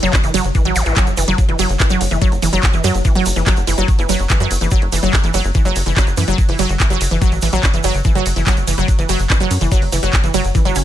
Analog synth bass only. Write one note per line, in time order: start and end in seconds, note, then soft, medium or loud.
0.03 0.10 F#1 medium
0.24 0.31 F#1 medium
0.34 0.42 F#1 loud
0.45 0.52 F#1 medium
0.65 0.73 A1 medium
0.76 0.83 A1 loud
0.86 0.94 A1 medium
1.07 1.14 F#1 medium
1.17 1.25 F#1 loud
1.28 1.35 F#1 medium
1.49 1.56 F#1 medium
1.59 1.67 F#1 loud
1.69 1.77 F#1 medium
1.90 1.98 F#1 medium
2.01 2.08 F#1 loud
2.11 2.19 F#1 medium
2.32 2.39 F#1 medium
2.42 2.50 F#1 loud
2.53 2.60 F#1 medium
2.74 2.81 F#1 medium
2.84 2.92 F#2 loud
2.94 3.02 F#1 medium
3.15 3.23 F#1 medium
3.26 3.33 F#1 loud
3.36 3.44 F#1 medium
3.57 3.64 F#1 medium
3.67 3.75 F#1 loud
3.78 3.85 F#1 medium
3.99 4.06 F#1 medium
4.09 4.17 F#1 loud
4.19 4.27 F#1 medium
4.40 4.48 F#2 medium
4.51 4.58 F#1 loud
4.61 4.69 F#1 medium
4.82 4.89 F#1 medium
4.92 5.00 F#1 loud
5.03 5.10 F#1 loud
5.24 5.31 F#1 medium
5.34 5.42 F#1 loud
5.44 5.52 F#1 medium
5.65 5.73 F#1 medium
5.76 5.83 F#1 loud
5.86 5.94 F#1 medium
6.07 6.14 F#1 medium
6.17 6.25 F#2 loud
6.28 6.35 F#1 medium
6.49 6.56 F#1 medium
6.59 6.67 F#1 loud
6.69 6.77 F#1 loud
6.90 6.98 F#1 medium
7.01 7.08 F#1 loud
7.11 7.19 F#1 medium
7.32 7.39 A1 medium
7.42 7.50 A1 loud
7.53 7.60 A1 medium
7.74 7.81 F#1 medium
7.84 7.92 F#1 loud
7.94 8.02 F#1 medium
8.15 8.23 F#1 medium
8.26 8.33 F#1 loud
8.36 8.44 F#1 medium
8.57 8.64 F#1 medium
8.67 8.75 F#1 loud
8.78 8.85 F#1 medium
8.99 9.06 F#1 medium
9.09 9.17 F#1 loud
9.19 9.27 F#1 medium
9.40 9.48 F#1 medium
9.51 9.58 F#2 loud
9.61 9.69 F#1 loud
9.82 9.89 F#1 medium
9.92 10.00 F#1 loud
10.03 10.10 F#1 medium
10.24 10.31 F#1 medium
10.34 10.42 F#1 loud
10.45 10.52 F#1 medium
10.65 10.73 F#1 medium
10.76 10.83 F#1 loud